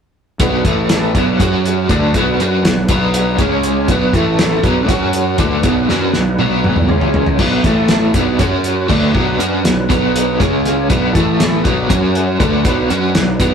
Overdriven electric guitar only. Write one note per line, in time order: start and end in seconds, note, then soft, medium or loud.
0.40 0.64 B2 medium
0.40 0.64 F#3 medium
0.40 0.65 B3 loud
0.65 1.14 A2 medium
0.65 1.15 E3 medium
0.65 1.15 A3 loud
1.15 1.39 B2 medium
1.15 1.39 F#3 loud
1.15 1.40 B3 loud
1.40 1.89 F#3 medium
1.40 1.90 C#4 medium
1.40 1.90 F#4 loud
1.89 2.14 D3 medium
1.89 2.14 A3 medium
1.89 2.15 D4 loud
2.15 2.39 B2 medium
2.15 2.40 F#3 medium
2.15 2.40 B3 loud
2.41 2.64 F#3 medium
2.41 2.65 C#4 medium
2.41 2.65 F#4 medium
2.65 2.85 B2 medium
2.65 2.85 F#3 medium
2.90 3.39 B2 loud
2.90 3.39 F#3 loud
2.90 3.40 B3 loud
3.39 3.89 C#3 medium
3.39 3.89 G#3 medium
3.39 3.90 C#4 medium
3.91 4.14 B2 medium
3.91 4.15 F#3 medium
3.91 4.15 B3 loud
4.15 4.64 A2 medium
4.15 4.64 E3 loud
4.15 4.65 A3 loud
4.65 4.89 B2 loud
4.65 4.89 F#3 loud
4.65 4.90 B3 loud
4.89 5.38 F#3 medium
4.89 5.39 C#4 loud
4.89 5.39 F#4 loud
5.39 5.63 D3 medium
5.39 5.64 A3 loud
5.39 5.64 D4 medium
5.64 5.89 B2 medium
5.64 5.89 F#3 loud
5.64 5.89 B3 loud
5.90 6.14 F#3 medium
5.90 6.14 C#4 medium
5.90 6.15 F#4 loud
6.16 6.36 B2 medium
6.16 6.36 F#3 medium
6.39 6.90 B2 medium
6.39 6.91 F#3 medium
6.39 6.92 B3 loud
6.90 7.39 C#3 medium
6.90 7.40 G#3 medium
6.90 7.40 C#4 medium
7.40 7.64 B2 loud
7.40 7.64 F#3 loud
7.40 7.65 B3 loud
7.64 8.14 A2 medium
7.64 8.14 E3 medium
7.64 8.15 A3 medium
8.15 8.39 B2 medium
8.15 8.38 F#3 loud
8.15 8.40 B3 loud
8.40 8.88 F#3 medium
8.40 8.89 C#4 loud
8.40 8.90 F#4 loud
8.89 9.14 D3 loud
8.89 9.14 A3 loud
8.89 9.14 D4 loud
9.14 9.39 B2 medium
9.14 9.38 F#3 medium
9.14 9.40 B3 medium
9.39 9.64 F#3 medium
9.39 9.64 C#4 medium
9.39 9.65 F#4 medium
9.65 9.85 B2 medium
9.65 9.85 F#3 medium
9.89 10.39 B2 medium
9.89 10.39 F#3 medium
9.89 10.40 B3 loud
10.40 10.89 C#3 medium
10.40 10.89 G#3 loud
10.40 10.90 C#4 medium
10.90 11.14 B2 medium
10.90 11.14 F#3 medium
10.90 11.15 B3 medium
11.16 11.64 A2 medium
11.16 11.65 E3 medium
11.16 11.65 A3 loud
11.64 11.89 B2 medium
11.64 11.88 F#3 loud
11.64 11.90 B3 loud
11.89 12.39 F#3 loud
11.89 12.39 C#4 loud
11.89 12.40 F#4 medium
12.40 12.64 D3 medium
12.40 12.64 A3 loud
12.40 12.65 D4 medium
12.64 12.89 B2 medium
12.64 12.89 F#3 loud
12.64 12.90 B3 loud
12.90 13.14 F#3 loud
12.90 13.15 C#4 medium
12.90 13.15 F#4 medium
13.15 13.35 B2 medium
13.15 13.36 F#3 medium
13.41 13.54 B2 medium
13.41 13.54 F#3 loud
13.41 13.54 B3 loud